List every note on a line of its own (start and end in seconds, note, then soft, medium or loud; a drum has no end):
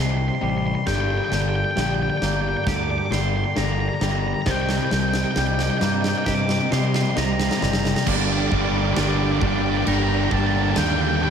0.00 0.29 C2 medium
0.00 0.37 C3 medium
0.00 0.37 G3 medium
0.00 0.41 G3 medium
0.00 2.12 A#3 medium
0.00 0.83 C4 medium
0.00 8.02 G4 medium
0.00 0.85 C5 medium
0.00 0.84 D#5 medium
0.00 0.10 C6 medium
0.11 0.17 C6 medium
0.17 0.25 C6 medium
0.28 0.34 C6 medium
0.35 0.43 C6 medium
0.41 0.74 A1 medium
0.41 0.82 C3 medium
0.41 0.82 G3 medium
0.41 0.49 C6 medium
0.49 0.57 C6 medium
0.58 0.66 C6 medium
0.67 0.74 C6 medium
0.75 0.83 C6 medium
0.86 1.18 G1 medium
0.86 1.29 G2 medium
0.86 1.29 D3 medium
0.86 1.29 G3 loud
0.86 4.44 G3 medium
0.86 8.03 A#4 medium
0.86 4.44 D5 medium
0.86 0.94 G5 medium
0.86 kick loud
0.86 snare medium
0.95 1.00 G5 medium
1.01 1.08 G5 medium
1.11 1.17 G5 medium
1.18 1.24 G5 medium
1.25 1.33 G5 medium
1.31 1.63 G1 medium
1.31 1.72 G2 medium
1.31 1.73 D3 medium
1.31 1.41 G5 medium
1.31 snare medium
1.41 1.49 G5 medium
1.49 1.55 G5 medium
1.56 1.63 G5 medium
1.65 1.71 G5 medium
1.71 1.79 G5 medium
1.76 2.08 A#1 medium
1.76 2.17 G2 medium
1.76 2.17 D3 medium
1.76 3.11 G3 medium
1.76 snare medium
1.81 1.87 G5 medium
1.87 1.94 G5 medium
1.95 2.02 G5 medium
2.03 2.09 G5 medium
2.10 2.17 G5 medium
2.18 4.49 A#3 medium
2.18 2.25 G5 medium
2.22 2.53 G1 medium
2.22 2.62 G2 medium
2.22 2.63 D3 medium
2.22 snare medium
2.26 2.33 G5 medium
2.33 2.41 G5 medium
2.42 2.48 G5 medium
2.49 2.56 G5 medium
2.57 2.64 G5 medium
2.64 2.98 D2 loud
2.64 3.07 G2 medium
2.64 3.07 D3 medium
2.64 2.72 G5 medium
2.64 2.75 D6 loud
2.64 kick loud
2.64 snare medium
2.76 2.84 D6 medium
2.84 2.90 D6 medium
2.90 2.98 D6 medium
2.98 3.06 D6 medium
3.06 3.12 D6 medium
3.11 3.43 G1 medium
3.11 3.52 G2 medium
3.11 3.52 D3 medium
3.11 4.01 G3 medium
3.11 3.21 C6 medium
3.11 snare medium
3.21 3.29 C6 medium
3.29 3.36 C6 medium
3.37 3.44 C6 medium
3.44 3.53 C6 medium
3.56 3.88 G1 medium
3.56 3.97 G2 medium
3.56 3.97 D3 medium
3.56 3.64 A#5 medium
3.56 snare medium
3.64 3.72 A#5 medium
3.72 3.80 A#5 medium
3.80 3.88 A#5 medium
3.89 3.94 A#5 medium
3.94 4.02 A#5 medium
4.01 4.33 G1 medium
4.01 4.42 G2 medium
4.01 4.42 D3 medium
4.01 5.36 G3 medium
4.01 4.11 A#5 medium
4.01 snare medium
4.12 4.19 A#5 medium
4.19 4.27 A#5 medium
4.28 4.34 A#5 medium
4.34 4.41 A#5 medium
4.42 4.49 A#5 medium
4.46 4.78 C2 medium
4.46 4.89 C3 loud
4.46 4.89 G3 medium
4.46 8.03 C4 medium
4.46 4.89 C4 loud
4.46 8.03 D#5 medium
4.46 4.54 G5 loud
4.46 kick loud
4.46 snare medium
4.55 4.61 G5 medium
4.62 4.69 G5 medium
4.69 4.77 G5 medium
4.69 snare medium
4.78 4.84 G5 medium
4.85 4.92 G5 medium
4.91 5.23 C2 medium
4.91 5.32 C3 medium
4.91 5.32 G3 medium
4.91 5.00 G5 medium
4.91 snare medium
5.00 5.08 G5 medium
5.09 5.17 G5 medium
5.14 5.24 G5 medium
5.14 snare loud
5.24 5.31 G5 medium
5.31 5.38 G5 medium
5.36 5.68 C2 medium
5.36 5.77 C3 medium
5.36 5.77 G3 loud
5.36 5.46 G5 medium
5.36 snare loud
5.47 5.54 G5 medium
5.54 5.62 G5 medium
5.59 snare medium
5.63 5.70 G5 medium
5.70 5.77 G5 medium
5.78 6.13 G2 medium
5.78 6.22 C3 medium
5.78 6.22 G3 medium
5.78 8.06 A#3 medium
5.78 5.85 G5 medium
5.78 snare loud
5.85 5.93 G5 medium
5.94 6.01 G5 medium
6.02 6.08 G5 medium
6.02 snare loud
6.09 6.17 G5 medium
6.18 6.24 G5 medium
6.25 6.58 G2 loud
6.25 6.67 C3 medium
6.25 6.67 G3 medium
6.25 6.32 G5 medium
6.25 6.34 D6 loud
6.25 kick loud
6.25 snare loud
6.35 6.41 D6 medium
6.42 6.50 D6 loud
6.49 6.59 D6 medium
6.49 snare loud
6.59 6.68 D6 medium
6.71 7.12 C3 medium
6.71 7.03 C3 medium
6.71 7.12 G3 medium
6.71 6.79 C6 loud
6.71 snare loud
6.79 6.87 C6 medium
6.87 6.95 C6 medium
6.94 7.02 C6 medium
6.94 snare loud
7.02 7.10 C6 medium
7.11 7.17 C6 medium
7.16 7.48 C2 medium
7.16 7.57 C3 medium
7.16 7.57 G3 loud
7.16 7.25 A#5 medium
7.16 snare loud
7.25 7.32 A#5 medium
7.33 7.40 A#5 medium
7.39 7.48 A#5 medium
7.39 snare loud
7.49 7.57 A#5 medium
7.49 snare loud
7.57 8.02 C3 medium
7.57 8.02 G3 medium
7.57 7.63 A#5 medium
7.62 7.93 F#1 medium
7.62 7.71 A#5 medium
7.62 snare loud
7.71 7.79 A#5 medium
7.71 snare loud
7.79 7.87 A#5 medium
7.85 7.95 A#5 medium
7.85 snare loud
7.95 8.03 A#5 medium
7.95 snare loud
8.05 8.47 G1 medium
8.05 8.50 G2 medium
8.05 8.51 D3 medium
8.05 8.51 G3 loud
8.05 8.51 A#3 medium
8.05 11.30 D4 medium
8.05 8.52 D4 loud
8.05 11.30 G4 medium
8.05 11.30 A#4 medium
8.05 8.16 D5 medium
8.05 11.30 G5 loud
8.05 kick loud
8.05 crash loud
8.05 crash medium
8.16 8.24 D5 medium
8.24 8.32 D5 medium
8.32 8.39 D5 medium
8.40 8.47 D5 medium
8.47 8.54 D5 medium
8.51 8.92 G1 loud
8.51 8.96 G2 medium
8.51 8.96 D3 medium
8.51 8.96 G3 medium
8.51 8.97 A#3 medium
8.51 8.98 D4 medium
8.51 8.61 D5 medium
8.51 kick medium
8.62 8.69 D5 medium
8.69 8.77 D5 medium
8.78 8.85 D5 medium
8.86 8.93 D5 medium
8.93 9.41 G2 medium
8.93 9.00 D5 medium
8.93 snare loud
8.93 crash medium
8.97 9.38 G1 medium
8.97 9.41 D3 medium
8.97 9.42 G3 medium
8.97 9.42 A#3 medium
8.97 9.43 D4 loud
8.97 9.08 D5 medium
9.09 9.16 D5 medium
9.16 9.23 D5 medium
9.24 9.31 D5 medium
9.32 9.38 D5 medium
9.39 9.82 G1 medium
9.39 9.85 G2 medium
9.39 9.85 D3 loud
9.39 9.47 D5 medium
9.39 kick medium
9.43 9.86 G3 medium
9.43 9.87 A#3 loud
9.43 9.87 D4 loud
9.43 9.54 D5 medium
9.54 9.61 D5 medium
9.61 9.69 D5 medium
9.70 9.77 D5 medium
9.77 9.85 D5 medium
9.85 10.27 G1 medium
9.85 10.30 G2 medium
9.85 10.30 D3 medium
9.85 10.31 G3 medium
9.85 10.31 A#3 loud
9.85 10.32 D4 loud
9.85 9.93 D5 medium
9.85 9.94 A#5 loud
9.85 crash medium
9.95 10.02 A#5 medium
10.03 10.09 A#5 loud
10.10 10.17 A#5 medium
10.18 10.24 A#5 loud
10.25 10.32 A#5 medium
10.31 10.72 G1 medium
10.31 10.75 G2 medium
10.31 10.76 D3 medium
10.31 10.76 G3 medium
10.31 10.76 A#3 medium
10.31 10.77 D4 medium
10.31 10.39 A5 loud
10.31 kick medium
10.40 10.46 A5 medium
10.47 10.55 A5 loud
10.55 10.62 A5 medium
10.63 10.69 A5 loud
10.70 10.77 A5 medium
10.76 11.30 D#2 medium
10.76 11.19 G2 loud
10.76 11.20 D3 loud
10.76 11.21 G3 loud
10.76 11.21 A#3 medium
10.76 11.21 D4 medium
10.76 10.85 G5 loud
10.76 snare loud
10.76 crash medium
10.86 10.92 G5 medium
10.93 11.00 G5 medium
11.01 11.08 G5 medium
11.08 11.16 G5 loud
11.16 11.23 G5 medium
11.21 11.30 G2 medium
11.21 11.30 D3 medium
11.21 11.30 G3 loud
11.21 11.30 A#3 medium
11.21 11.30 D4 loud
11.21 11.30 G5 medium